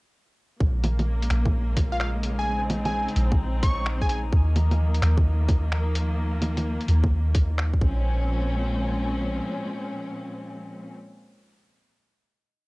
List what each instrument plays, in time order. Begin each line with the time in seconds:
0.60 808-style bass A#1, string section C#3 G#3 A#3, synth texture D#4 D#5, kick
0.84 closed hi-hat, low bongo
0.99 closed hi-hat, low bongo
1.22 closed hi-hat
1.30 808-style bass A#1, finger snap, closed hi-hat
1.46 kick, low bongo
1.77 kick, closed hi-hat, low bongo
1.92 digital synth lead F5
2.00 digital synth lead F5, finger snap
2.23 closed hi-hat
2.39 digital synth lead G#5
2.46 string section C4
2.70 closed hi-hat, low bongo
2.85 digital synth lead G#5, closed hi-hat, low bongo
3.08 closed hi-hat
3.16 808-style bass A#1, closed hi-hat
3.32 kick, low bongo
3.63 digital synth lead C#6, kick, closed hi-hat
3.86 finger snap
4.01 digital synth lead G#5, kick
4.09 digital synth lead G#5, closed hi-hat
4.32 808-style bass D#2, string section D#3 F3 A#3, kick
4.56 closed hi-hat, low bongo
4.71 closed hi-hat, low bongo
4.95 closed hi-hat
5.02 808-style bass D#2, finger snap, closed hi-hat
5.18 kick, low bongo
5.49 kick, closed hi-hat, low bongo
5.72 finger snap
5.95 closed hi-hat
6.42 closed hi-hat, low bongo
6.57 closed hi-hat, low bongo
6.81 closed hi-hat
6.88 808-style bass D#2, closed hi-hat
7.04 kick, low bongo
7.35 kick, closed hi-hat
7.58 finger snap
7.73 kick
7.81 808-style bass A#1, string section A#2 F3 G#3 C4 C#4, kick